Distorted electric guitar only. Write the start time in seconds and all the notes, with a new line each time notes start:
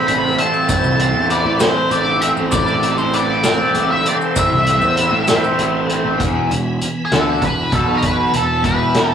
Already playing: A2 E3 C4 E4 B4
0.09 A3
0.39 C4
0.69 A2
0.99 C4
1.31 B4
1.62 C4
1.91 A3
2.22 C4
2.52 A2
2.83 C4
3.14 B4
3.45 C4
3.76 A3
4.06 C4
4.37 A2
4.68 C4
4.99 B4
5.29 C4
5.60 A3
5.90 C4
6.21 E2
6.52 E2
7.12 D3
7.43 E2
7.73 B2
8.34 E2
8.65 E2